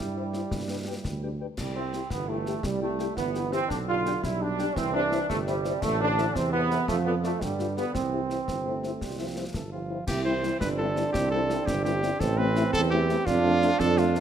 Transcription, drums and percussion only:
0.34 snare
0.51 concert bass drum, snare
1.05 concert bass drum, snare
1.58 concert bass drum, snare, crash
1.93 snare
2.10 concert bass drum, snare
2.46 snare
2.63 concert bass drum, snare
2.99 snare
3.17 concert bass drum, snare
3.35 snare
3.52 snare
3.70 concert bass drum, snare
4.06 snare
4.24 concert bass drum, snare
4.59 snare
4.76 concert bass drum, snare
5.12 snare
5.30 concert bass drum, snare
5.47 snare
5.65 snare
5.82 concert bass drum, snare, crash
6.18 snare
6.36 concert bass drum, snare
6.71 snare
6.88 concert bass drum, snare
7.24 snare
7.41 concert bass drum, snare
7.59 snare
7.77 snare
7.95 concert bass drum, snare
8.30 snare
8.48 concert bass drum, snare
8.84 snare
9.01 concert bass drum, snare
9.54 concert bass drum, snare
10.08 concert bass drum, snare, crash
10.43 snare
10.61 concert bass drum, snare
10.96 snare
11.14 concert bass drum, snare
11.50 snare
11.67 concert bass drum, snare
11.85 snare
12.03 snare
12.20 concert bass drum, snare
12.56 snare
12.73 concert bass drum, snare
13.09 snare
13.27 concert bass drum, snare
13.62 snare
13.80 concert bass drum, snare
13.97 snare
14.15 snare

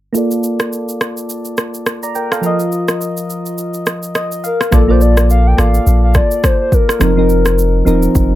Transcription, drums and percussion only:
0.15 shaker
0.31 shaker
0.43 shaker
0.60 cross-stick, shaker
0.73 shaker
0.89 shaker
1.01 cross-stick, shaker
1.17 shaker
1.30 shaker
1.45 shaker
1.57 cross-stick, shaker
1.74 shaker
1.86 cross-stick, shaker
2.03 shaker
2.15 shaker
2.32 cross-stick, shaker
2.43 shaker
2.60 shaker
2.72 shaker
2.88 cross-stick, shaker
3.01 shaker
3.17 shaker
3.30 shaker
3.46 shaker
3.58 shaker
3.74 shaker
3.86 cross-stick, shaker
4.03 shaker
4.15 cross-stick, shaker
4.32 shaker
4.44 shaker
4.61 cross-stick, shaker
4.72 kick, cross-stick, shaker
5.01 shaker
5.17 cross-stick, shaker
5.30 shaker
5.58 cross-stick, shaker
5.74 shaker
5.87 shaker
6.14 kick, cross-stick, shaker
6.31 shaker
6.44 kick, cross-stick, shaker
6.72 kick, shaker
6.89 cross-stick, shaker
7.01 cross-stick, shaker
7.29 shaker
7.46 cross-stick, shaker
7.59 shaker
7.87 shaker
8.03 shaker
8.15 kick, shaker

